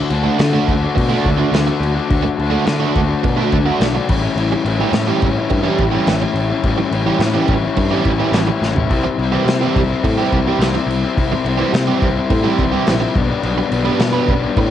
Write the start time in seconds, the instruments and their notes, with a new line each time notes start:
Already playing: overdriven electric guitar A3 D4 F#4
0.10 picked electric bass D2, overdriven electric guitar D3 A3 D4, crash
0.14 overdriven electric guitar F#4
0.23 overdriven electric guitar D3 A3 D4 F#4
0.29 overdriven electric guitar A3
0.39 overdriven electric guitar D3 A3 D4 F#4, picked electric bass D3, muted overdriven electric guitar stroke, snare, crash
0.53 overdriven electric guitar D3 A3 D4 F#4
0.68 picked electric bass D2, overdriven electric guitar D3 A3, kick, crash
0.72 overdriven electric guitar D4 F#4
0.82 overdriven electric guitar D4 F#4
0.86 overdriven electric guitar A3
0.95 picked electric bass B2, muted overdriven electric guitar stroke, kick, crash
1.09 overdriven electric guitar D3 A3 D4 F#4
1.15 overdriven electric guitar A3 D4
1.25 picked electric bass D2, overdriven electric guitar D3 A3 D4, kick, crash
1.29 overdriven electric guitar F#4
1.37 overdriven electric guitar D3 A3 D4 F#4
1.51 picked electric bass D2, overdriven electric guitar D3 A3 D4, snare, crash
1.56 overdriven electric guitar F#4
1.66 overdriven electric guitar D4 F#4, muted overdriven electric guitar stroke
1.71 overdriven electric guitar A3
1.80 picked electric bass D2, crash
1.95 overdriven electric guitar A3 D4 F#4
2.09 picked electric bass D2, overdriven electric guitar D3 A3 D4 F#4, kick, crash
2.23 muted overdriven electric guitar stroke
2.37 picked electric bass D2, overdriven electric guitar D3 A3 D4 F#4, crash
2.50 overdriven electric guitar D3 A3 D4 F#4
2.54 overdriven electric guitar A3
2.64 overdriven electric guitar D3 A3 D4 F#4, picked electric bass D3, muted overdriven electric guitar stroke, snare, crash
2.80 overdriven electric guitar D3 A3 D4 F#4
2.95 picked electric bass D2, overdriven electric guitar D3 A3 D4 F#4, kick, crash
3.08 overdriven electric guitar A3 D4 F#4
3.23 picked electric bass B2, muted overdriven electric guitar stroke, kick, crash
3.37 overdriven electric guitar D3 A3 D4 F#4
3.52 picked electric bass D2, overdriven electric guitar D3 A3 D4 F#4, kick, crash
3.66 overdriven electric guitar D3 A3 D4 F#4
3.80 picked electric bass B1, overdriven electric guitar D3 A3 D4 F#4, snare, crash
3.95 overdriven electric guitar A3 D4 F#4, muted overdriven electric guitar stroke
4.08 picked electric bass A1, overdriven electric guitar A2 E3 G3 C#4, kick, crash
4.12 overdriven electric guitar E4
4.22 overdriven electric guitar G3 C#4 E4
4.36 picked electric bass A1, overdriven electric guitar A2 E3 G3 C#4, crash
4.40 overdriven electric guitar E4
4.52 muted overdriven electric guitar stroke
4.65 picked electric bass A1, overdriven electric guitar E3 G3 C#4, crash
4.69 overdriven electric guitar E4
4.79 overdriven electric guitar E3 G3 C#4 E4 G4
4.92 picked electric bass A2, overdriven electric guitar A2 E3, muted overdriven electric guitar stroke, snare, crash
4.96 overdriven electric guitar G3 C#4 E4
5.07 overdriven electric guitar E3 G3 C#4 G4
5.22 picked electric bass A1, overdriven electric guitar E3 G3 C#4, kick, crash
5.27 overdriven electric guitar E4
5.37 overdriven electric guitar G3 C#4 E4
5.50 picked electric bass G2, muted overdriven electric guitar stroke, kick, crash
5.63 overdriven electric guitar E3 G3 C#4 E4 G4
5.68 overdriven electric guitar G3 C#4
5.78 picked electric bass A1, overdriven electric guitar E3 G3 C#4, kick, crash
5.83 overdriven electric guitar E4
5.91 overdriven electric guitar E3 G3 C#4 E4 G4
5.96 overdriven electric guitar G3 C#4
6.07 picked electric bass A1, overdriven electric guitar A2 E3, snare, crash
6.11 overdriven electric guitar G3 C#4 E4
6.21 overdriven electric guitar C#4 E4, muted overdriven electric guitar stroke
6.26 overdriven electric guitar G3
6.34 picked electric bass A1, crash
6.50 overdriven electric guitar G3 C#4 E4
6.64 picked electric bass A1, overdriven electric guitar A2 E3 G3 C#4, kick, crash
6.68 overdriven electric guitar E4
6.78 muted overdriven electric guitar stroke
6.92 picked electric bass A1, overdriven electric guitar E3 G3 C#4, crash
6.96 overdriven electric guitar E4
7.07 overdriven electric guitar E3 G3 C#4 E4 G4
7.19 picked electric bass A2, overdriven electric guitar A2 E3, muted overdriven electric guitar stroke, snare, crash
7.23 overdriven electric guitar G3 C#4 E4
7.34 overdriven electric guitar E3 G3 C#4 G4
7.48 picked electric bass A1, overdriven electric guitar E3 G3, kick, crash
7.53 overdriven electric guitar C#4 E4
7.64 overdriven electric guitar G3 C#4 E4
7.77 picked electric bass G2, muted overdriven electric guitar stroke, kick, crash
7.91 overdriven electric guitar E3 G3 C#4 E4 G4
8.05 picked electric bass A1, overdriven electric guitar E3 G3 C#4, kick, crash
8.09 overdriven electric guitar E4
8.19 overdriven electric guitar E3 G3 C#4 E4 G4
8.32 picked electric bass A1, overdriven electric guitar A2 E3, snare, crash
8.37 overdriven electric guitar G3 C#4 E4
8.47 overdriven electric guitar C#4 E4, muted overdriven electric guitar stroke
8.53 overdriven electric guitar G3
8.62 picked electric bass A1, snare
8.76 overdriven electric guitar G3 C#4 E4, floor tom
8.90 picked electric bass C2, overdriven electric guitar C3 G3 C4 E4, kick, crash
9.03 muted overdriven electric guitar stroke
9.17 picked electric bass C2, overdriven electric guitar C3 G3 C4 E4, crash
9.32 overdriven electric guitar E3 G3 C4 E4 G4
9.44 overdriven electric guitar C3 G3 C4 E4, picked electric bass C3, muted overdriven electric guitar stroke, crash
9.49 snare
9.61 overdriven electric guitar E3 G3 C4 G4
9.75 picked electric bass C2, overdriven electric guitar C3 G3 C4 E4, kick, crash
9.89 overdriven electric guitar G3 C4 E4
10.04 picked electric bass A2, muted overdriven electric guitar stroke, kick, crash
10.17 overdriven electric guitar E3 G3 C4 E4 G4
10.32 picked electric bass C2, overdriven electric guitar C3 G3 C4 E4, kick, crash
10.45 overdriven electric guitar E3 G3 C4 E4 G4
10.59 picked electric bass C2, overdriven electric guitar C3 G3 C4 E4, snare, crash
10.74 overdriven electric guitar G3 C4 E4, muted overdriven electric guitar stroke
10.87 picked electric bass C2, crash
11.03 overdriven electric guitar G3 C4 E4
11.17 picked electric bass C2, overdriven electric guitar C3 G3 C4 E4, kick, crash
11.32 muted overdriven electric guitar stroke
11.45 picked electric bass C2, overdriven electric guitar C3 G3 C4, crash
11.49 overdriven electric guitar E4
11.57 overdriven electric guitar E3 G3 C4 E4 G4
11.62 overdriven electric guitar G3 C4
11.72 picked electric bass C3, overdriven electric guitar C3 G3 C4 E4, muted overdriven electric guitar stroke, snare, crash
11.87 overdriven electric guitar E3 G3 C4 G4
12.02 picked electric bass C2, overdriven electric guitar C3 G3 C4 E4, kick, crash
12.16 overdriven electric guitar G3 C4 E4
12.30 picked electric bass A2, muted overdriven electric guitar stroke, kick, crash
12.44 overdriven electric guitar E3 G3 C4 E4 G4
12.58 picked electric bass C2, overdriven electric guitar C3 G3 C4 E4, kick, crash
12.72 overdriven electric guitar E3 G3 C4 E4 G4
12.76 overdriven electric guitar G3
12.86 picked electric bass A#1, overdriven electric guitar C3 G3 C4 E4, snare, crash
13.00 overdriven electric guitar C4 E4, muted overdriven electric guitar stroke
13.05 overdriven electric guitar G3
13.15 picked electric bass B1, overdriven electric guitar B2 G3 B3 D4, kick, crash
13.28 overdriven electric guitar G3 B3 D4
13.43 picked electric bass B1, overdriven electric guitar B2 G3 B3 D4, crash
13.58 muted overdriven electric guitar stroke
13.70 picked electric bass B1, overdriven electric guitar B2 G3 B3 D4, crash
13.84 overdriven electric guitar G3 B3 D4 G4 B4
13.98 overdriven electric guitar B2 G3 B3 D4, picked electric bass B2, muted overdriven electric guitar stroke, snare, crash
14.13 overdriven electric guitar B3 D4 G4 B4
14.28 picked electric bass B1, overdriven electric guitar B2 G3 B3 D4, kick, crash
14.42 overdriven electric guitar G3 B3 D4
14.57 picked electric bass A2, muted overdriven electric guitar stroke, kick, crash